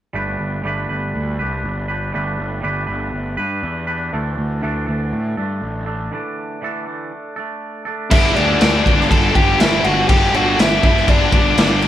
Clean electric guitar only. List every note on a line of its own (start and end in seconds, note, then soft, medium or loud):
0.13 0.63 G3 medium
0.13 0.64 A3 medium
0.13 0.65 D4 medium
0.13 0.65 G4 medium
0.13 0.66 B4 medium
0.64 2.12 G3 medium
0.64 1.42 A3 medium
0.64 0.91 D4 medium
0.64 0.90 G4 medium
0.64 0.89 B4 medium
0.89 1.41 D4 medium
0.89 1.39 G4 medium
0.89 1.38 B4 medium
1.39 1.91 D4 medium
1.39 1.88 G4 medium
1.39 1.87 B4 medium
1.88 2.14 D4 medium
1.88 2.13 G4 medium
1.88 2.14 B4 medium
2.12 2.60 G3 medium
2.12 2.62 A3 medium
2.12 2.63 D4 medium
2.12 2.63 G4 medium
2.12 2.63 B4 medium
2.62 3.12 G3 medium
2.62 3.40 A3 medium
2.62 2.89 D4 loud
2.62 2.87 G4 medium
2.62 2.85 B4 loud
2.87 3.39 D4 medium
2.87 3.38 G4 medium
2.87 3.36 B4 medium
3.37 3.89 D4 medium
3.37 3.87 G4 medium
3.37 3.86 B4 medium
3.87 4.13 D4 medium
3.87 4.12 G4 medium
3.87 4.11 B4 medium
4.12 4.61 D3 medium
4.12 4.62 E3 medium
4.12 4.63 A3 medium
4.12 4.63 D4 medium
4.12 4.64 A4 medium
4.62 6.11 D3 medium
4.62 5.42 E3 medium
4.62 4.89 A3 medium
4.62 4.88 D4 medium
4.62 4.86 A4 medium
4.86 5.39 A3 medium
4.86 5.38 D4 medium
4.86 5.37 A4 medium
5.37 5.88 A3 medium
5.37 5.87 D4 medium
5.37 5.86 A4 medium
5.86 6.12 A3 medium
5.86 6.12 D4 medium
5.86 6.13 A4 medium
6.12 6.60 D3 medium
6.12 6.61 E3 medium
6.12 6.62 A3 medium
6.12 6.63 D4 medium
6.12 6.63 A4 medium
6.61 7.11 D3 medium
6.61 7.12 E3 medium
6.61 6.87 A3 medium
6.61 6.86 D4 medium
6.61 6.85 A4 loud
6.86 7.38 A3 medium
6.86 7.37 D4 medium
6.86 7.35 A4 medium
7.36 7.87 A3 medium
7.36 7.86 D4 medium
7.36 7.84 A4 medium
7.85 8.10 A3 medium
7.85 8.10 D4 medium
7.85 8.09 A4 medium